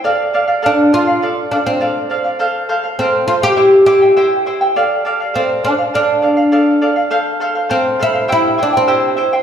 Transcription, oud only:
\new Staff \with { instrumentName = "Oud" } { \time 2/4 \key d \minor \tempo 4 = 102 r4 d'8 f'8~ | f'8 d'16 c'8. r8 | r4 c'8 f'16 g'16~ | g'8 g'4 r8 |
r4 c'8 d'8 | d'4. r8 | r4 c'8 e'8 | e'8 d'16 c'8. r8 | }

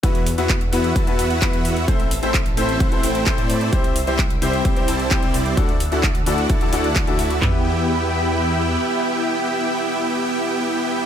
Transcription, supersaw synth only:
\new Staff \with { instrumentName = "Supersaw synth" } { \time 4/4 \key e \minor \tempo 4 = 130 <b e' fis' e'' fis''>16 r8 <b e' fis' e'' fis''>16 r8 <b e' fis' e'' fis''>8 <b e' fis' e'' a''>8 <b e' fis' e'' fis''>8. <b e' fis' e'' fis''>8. | <c' c''>16 r8 <a c' e' c'' e''>16 r8 <a c' e' c'' e''>8 <a c' e' c'' fis''>8 <a c' e' c'' g''>8. <a c' e' c'' d''>8. | <g c' e' c'' e''>16 r8 <g c' e' c'' e''>16 r8 <g c' e' c'' e''>8 <g c' e' c'' g''>8 <g c' e' c'' a''>8. <g c' e' c'' d''>8. | <a fis' fis''>16 r8 <a e' fis' d'' fis''>16 r8 <a e' fis' d'' fis''>8 <a e' fis' d'' a''>8 <a e' fis' d'' fis''>8. <a e' fis' d'' e''>8. |
<b e' g' e'' g''>1~ | <b e' g' e'' g''>1 | }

